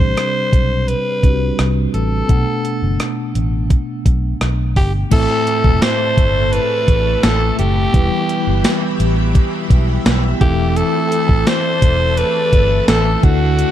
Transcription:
Already playing: C3 G3 C4 D4 G4 C5
0.00 A1, kick
0.17 cross-stick, closed hi-hat
0.53 B1, kick, closed hi-hat
0.88 B4, closed hi-hat
1.23 C2 G3 C4 D4 F#4, kick, closed hi-hat
1.30 G4
1.59 C2, cross-stick, closed hi-hat
1.94 A1 A4, closed hi-hat
2.28 B1 B2 A3 B3 D4 F#5, kick, closed hi-hat
2.65 closed hi-hat
2.82 F#1
3.00 cross-stick, closed hi-hat
3.35 A1, closed hi-hat
3.70 kick, closed hi-hat
4.06 B1, kick, closed hi-hat
4.41 B1, cross-stick, closed hi-hat
4.76 G1 G4, kick, open hi-hat
5.11 A1 A2 E3 A3 C4 E4 A4 E5 A5 E6, kick, closed hi-hat, crash
5.47 closed hi-hat
5.64 E1, kick
5.81 A2 E3 A3 C5, snare, closed hi-hat, tambourine
6.17 G1, kick, closed hi-hat
6.51 A2 E3 B4, closed hi-hat
6.57 A3
6.88 A1, kick, closed hi-hat
7.23 A1 A4, snare, closed hi-hat, tambourine
7.59 F#1 G4, closed hi-hat
7.93 E1 E2 B2 E3 G3 B3 E4 G4 B4 B5, kick, closed hi-hat
8.29 closed hi-hat
8.47 G1
8.64 E2 B2 E3, snare, closed hi-hat, tambourine
9.00 A1, closed hi-hat
9.34 E2 B2 E3, kick, closed hi-hat
9.70 B1, kick, closed hi-hat
10.06 B1, snare, closed hi-hat, tambourine
10.40 E1 A2 E3 A3 C4 E4 G4 A4 E5 A5, kick, closed hi-hat
10.76 A4, closed hi-hat
11.12 closed hi-hat
11.29 A1, kick
11.46 A2 E3 A3 C5, snare, closed hi-hat, tambourine
11.82 E1, kick, closed hi-hat
12.17 A2 E3 A3 B4, closed hi-hat
12.53 G1, kick, closed hi-hat
12.88 A1 A4, snare, closed hi-hat, tambourine
13.22 D2 D3 A3 D4 E4 F#4 A4 F#5 D6, kick, closed hi-hat
13.59 closed hi-hat

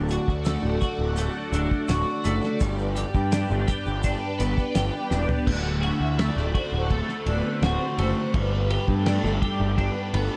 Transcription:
Already playing: D1 D2 D4 F#4 A4 D5 F#5
0.08 F#4, closed hi-hat, shaker
0.28 D2, kick, snare
0.44 A3, snare, closed hi-hat, shaker
0.63 D1
0.81 F#4, kick, closed hi-hat, shaker
0.99 D1
1.16 A3, closed hi-hat, shaker
1.52 D1 D3, closed hi-hat, shaker
1.71 kick
1.88 D1 F#4, snare, closed hi-hat, shaker
2.24 F#1 A3, closed hi-hat, shaker
2.42 snare, shaker
2.60 G1 G2 G4 B4 G5, kick, closed hi-hat, shaker
2.79 shaker
2.96 G4, snare, closed hi-hat, shaker
3.14 G2, kick, shaker
3.32 D4, snare, closed hi-hat, shaker
3.50 G1, shaker
3.68 G4, kick, closed hi-hat, shaker
3.86 G1, shaker
4.03 D4, kick, closed hi-hat, shaker
4.38 G1 B3, closed hi-hat, shaker
4.58 kick, shaker
4.75 G1 G4, snare, closed hi-hat, shaker
5.10 E1 D4, snare, shaker
5.29 floor tom
5.45 D1 D2 F#5, kick, crash
5.81 F#4 E5, ride
6.00 D2 E5
6.18 A3 D5, snare, ride
6.36 D1, snare
6.54 F#4 C5, kick, ride
6.72 D1 A4
6.90 A3, kick, ride
7.09 snare
7.26 D1 D3 B4, ride
7.44 C5
7.62 D1 F#4, snare, ride
7.98 F#1 A3, ride
8.34 G1 G2 B4, kick, ride
8.70 G4, ride
8.88 G2 A4, kick
9.06 D4, snare, ride
9.24 G1, snare
9.42 G4, kick, ride
9.60 G1
9.78 D4 B4, kick, ride
10.14 G1 B3 A4, ride

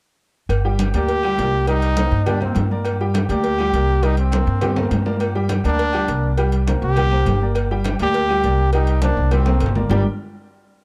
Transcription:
0.49 G1, cowbell, high conga, low agogo
0.65 G3 G4 G5, high conga
0.79 cowbell, high conga, low agogo
0.94 D2 A#3 G4 A#4 D5, cowbell, high conga, low agogo
1.09 cowbell, high conga
1.23 G3 G4 G5, high conga, low agogo
1.38 C2 A#3 A#4 D5, cowbell, high conga, low timbale
1.54 high conga
1.67 G3 D#4 G4 G5, cowbell, high conga, low agogo
1.82 cowbell, high conga
1.96 A#3 A#4 C5, cowbell, high conga, low agogo
2.12 G2, high conga
2.26 G3 D4 G4 G5, cowbell, high conga, low conga, low agogo
2.41 A#3 C4 A#4 C5, high conga, low conga, low agogo
2.55 G2, cowbell, high conga, low timbale, low agogo
2.71 A#3 A#4 D5, high conga
2.85 cowbell, high conga, low agogo
3.01 G3 G4 G5, high conga
3.14 cowbell, high conga, low agogo
3.29 D2 A#3 G4 A#4 D5, cowbell, high conga, low agogo
3.44 cowbell, high conga
3.58 G3 G4 G5, high conga, low agogo
3.73 C2 A#3 A#4 D5, cowbell, high conga
3.88 high conga
4.03 G3 D#4 G4 G5, cowbell, high conga, low agogo
4.17 C4, cowbell, high conga
4.32 A#3 A#4 C5, cowbell, high conga, low agogo
4.47 G2, high conga
4.61 G3 G4 G5, cowbell, high conga, low conga, high timbale, low agogo
4.76 A#3 A#4 C5, high conga, low conga, high timbale, low agogo
4.91 G2, cowbell, high conga, low timbale, low agogo
5.06 A#3 A#4 D5, high conga, low timbale
5.20 cowbell, high conga, low agogo
5.35 G3 G4 G5, high conga
5.49 cowbell, high conga, low agogo
5.64 D2 A#3 D4 A#4 D5, cowbell, high conga, low agogo
5.79 cowbell, high conga
5.93 G3 G4 G5, high conga, low agogo
6.08 C2 A#3 A#4 D5, cowbell, high conga
6.24 high conga
6.38 G3 G4 G5, cowbell, high conga, low agogo
6.52 cowbell, high conga
6.67 A#3 A#4 C5, cowbell, high conga, low agogo
6.82 C2 G4, high conga
6.96 G3 G4 G5, cowbell, high conga, low conga, low agogo
7.11 A#3 A#4 C5, high conga, low agogo
7.26 G1, cowbell, high conga, low agogo
7.41 A#3 A#4 D5, high conga
7.55 cowbell, high conga, low agogo
7.71 G3 G4 G5, high conga
7.84 cowbell, high conga, low agogo
7.99 D2 A#3 G4 A#4 D5, cowbell, high conga, low agogo
8.14 cowbell, high conga
8.29 G3 G4 G5, high conga, low agogo
8.44 C2 A#3 A#4 D5, cowbell, high conga
8.58 high conga
8.73 G3 D#4 G4 G5, cowbell, high conga, low agogo
8.87 cowbell, high conga
9.02 A#3 D4 A#4 C5, cowbell, high conga, low agogo
9.17 C2, high conga
9.31 G3 C4 G4 G5, cowbell, high conga, low conga, low agogo
9.46 A#3 A#4 C5, high conga, high timbale, low agogo
9.60 G1, cowbell, high timbale, low agogo
9.66 low conga
9.75 A#3 A#4 D5, low conga, low timbale
9.90 G1 G3 D4 G4 A#4 D5 G5, low bongo, low conga, low timbale

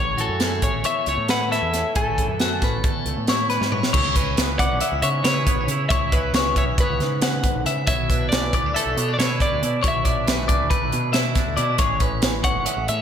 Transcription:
Already playing: A1 A2 C#5
0.17 A1 E3 F#4 A4, closed hi-hat
0.29 F#2
0.40 A3 G#4, snare, closed hi-hat
0.62 A1 C#4 C#5, kick, closed hi-hat
0.84 E2 C#5 E5, closed hi-hat
1.06 C#2 A3 C#5, closed hi-hat
1.17 A2
1.28 E4 B4 F#5, snare, closed hi-hat
1.51 C#4 A4 E5, snare, closed hi-hat
1.62 E2
1.73 A2, snare, closed hi-hat
1.95 A1 A2 E3 A3 C#4 E4 A4 G#5, kick, closed hi-hat
2.17 A1 E3, kick, closed hi-hat
2.28 F#2
2.40 A3 F#4, snare, closed hi-hat
2.62 A1 C#4 B4, kick, snare, closed hi-hat
2.84 E2 A4, kick, closed hi-hat
3.06 C#2 A3, closed hi-hat
3.17 A2
3.27 E4 C#5, snare, closed hi-hat
3.50 B3 B4, snare, closed hi-hat
3.61 G#2 C#4, snare
3.72 A2 C#5, mid tom
3.83 snare
3.93 C#2 C#3 E4 C#5, kick, crash
4.16 C#4 B4, kick, closed hi-hat
4.37 C#2 E3 B3, snare, closed hi-hat
4.59 C#4 D5 F#5, kick, closed hi-hat
4.70 B1
4.81 B3 E5, closed hi-hat
4.92 C#2
5.02 G#2 C#3 C#4 C#5 E5, closed hi-hat
5.24 C#3 E4 B4 C#5, snare, closed hi-hat
5.47 B3, kick, closed hi-hat
5.56 B1
5.61 C#4
5.67 C#3, closed hi-hat
5.71 E4
5.89 C#2 C#3 E4 C#5 E5, kick, closed hi-hat
6.12 C#4 B4 E5, kick, closed hi-hat
6.33 C#2 E3 B3 C#5, snare, closed hi-hat
6.56 C#4 C#5 E5, kick, closed hi-hat
6.67 B1
6.78 B3 B4 C#5, kick, closed hi-hat
6.89 C#2
7.00 G#2 C#3 C#4, snare, closed hi-hat
7.22 C#3 E3 F#5, snare, closed hi-hat
7.43 D3, kick, closed hi-hat
7.55 B1
7.66 C#3 E5, closed hi-hat
7.87 B1 B2 E4 C#5 E5, kick, closed hi-hat
8.10 D4 B4, kick, closed hi-hat
8.29 B1 E3 D5, snare, closed hi-hat
8.33 A3
8.53 B3 D5, kick, closed hi-hat
8.64 D2 D4
8.74 A3 A4 E5, closed hi-hat
8.86 B1
8.97 B2 B3 C#5, closed hi-hat
9.08 D4
9.14 D5
9.18 B2 E4 B4 C#5, snare, closed hi-hat
9.40 D4 D5, kick, closed hi-hat
9.52 D2
9.63 B2 E4, closed hi-hat
9.83 B1 B2 E4 C#5, kick, closed hi-hat
9.88 E5
10.05 D4 D5, kick, closed hi-hat
10.27 B1 E3 A3 B4, snare, closed hi-hat
10.48 D4 D5, kick, closed hi-hat
10.61 D2
10.70 A3 B4, kick, closed hi-hat
10.82 B1
10.92 B2 D4, closed hi-hat
11.13 B2 E4 E5, snare, closed hi-hat
11.35 D4, kick, snare, closed hi-hat
11.48 D2
11.57 B2 E4 D5, closed hi-hat
11.78 A1 A2 E3 G#3 C#4 G#4 C#5, kick, closed hi-hat
12.00 C#4 B4, kick, closed hi-hat
12.22 A1 E3 G#3, snare, closed hi-hat
12.44 C#4 C#5 F#5, kick, closed hi-hat
12.55 G#1
12.65 G#3 E5, closed hi-hat
12.77 A1
12.88 E2 A2 C#4 C#5 E5, closed hi-hat

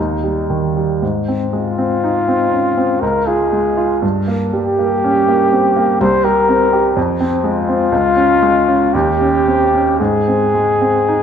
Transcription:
Already playing: D#2 D#4
0.24 G3
0.50 D#3
0.77 G3
1.02 G#2
1.28 C4
1.52 G#3 F4
1.78 C4
2.04 D#4
2.28 C4
2.53 C#4
2.77 C4
3.01 C#2 A#4
3.27 F4 G#4
3.52 G#3
3.77 F4
4.02 G2
4.28 A#3
4.53 G3 G4
4.79 A#3
5.04 C#4
5.28 A#3
5.53 C4
5.76 A#3
6.01 C2 C5
6.24 G4 A#4
6.49 C4
6.73 G4
6.96 F2
7.20 C4
7.44 G#3 F4
7.69 C4
7.92 C#2
8.16 C#4
8.42 G#3
8.68 C#4
8.93 D#2 G4
9.21 C#4
9.48 C4
9.75 C#4
9.99 G#2 G#4
10.28 C4
10.55 G#3
10.81 C4
11.08 D#4

